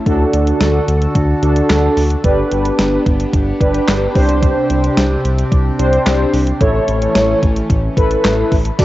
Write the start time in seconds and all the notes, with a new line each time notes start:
0.06 D2 D3 D4 F#4 A4, kick, closed hi-hat
0.33 D2, closed hi-hat
0.47 closed hi-hat
0.61 D2, snare, closed hi-hat
0.88 D2, closed hi-hat
1.02 closed hi-hat
1.15 D2, kick, closed hi-hat
1.42 D2 D4 F#4 A4, closed hi-hat
1.56 closed hi-hat
1.70 D2, snare, clap, closed hi-hat
1.97 D2, open hi-hat
2.10 closed hi-hat
2.24 G1 B3 D4 G4 B4, kick, closed hi-hat
2.52 G1, closed hi-hat
2.65 closed hi-hat
2.79 G1, snare, closed hi-hat
3.06 G1, kick, closed hi-hat
3.20 closed hi-hat
3.33 G1, kick, closed hi-hat
3.61 G1 D4 G4 B4, kick, closed hi-hat
3.74 closed hi-hat
3.88 G1, snare, clap, closed hi-hat
4.15 C2 C3 C4 D4 G4 C5, kick, open hi-hat
4.29 closed hi-hat
4.43 kick, closed hi-hat
4.70 C2, closed hi-hat
4.84 closed hi-hat
4.97 C2, snare, closed hi-hat
5.25 C2, closed hi-hat
5.38 closed hi-hat
5.52 C2, kick, closed hi-hat
5.79 C2 D4 G4 C5, closed hi-hat
5.93 closed hi-hat
6.06 C2, snare, clap, closed hi-hat
6.33 C2, open hi-hat
6.47 closed hi-hat
6.61 A1 E3 A3 C#4 E4 A4 C#5, kick, closed hi-hat
6.88 A1, closed hi-hat
7.02 closed hi-hat
7.15 A1, snare, closed hi-hat
7.43 A1, kick, closed hi-hat
7.56 closed hi-hat
7.70 A1, kick, closed hi-hat
7.97 A1 E4 A4 B4, kick, closed hi-hat
8.11 closed hi-hat
8.24 A1, snare, clap, closed hi-hat
8.52 A1, kick, open hi-hat
8.65 closed hi-hat
8.79 D2 F#4 A4 D5, kick, closed hi-hat, crash